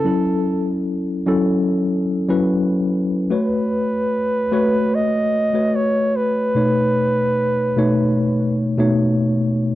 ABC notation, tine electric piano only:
X:1
M:4/4
L:1/16
Q:1/4=74
K:F#dor
V:1 name="Tine electric piano"
[F,CEA]6 [F,CEA]4- [F,CEA] [F,CEB]4- [F,CEB] | [A,FBc]6 [A,FBc]4- [A,FBc] [A,FBc]4- [A,FBc] | [B,,A,Dc]6 [B,,A,Dc]4- [B,,A,Dc] [B,,A,Dc]4- [B,,A,Dc] |]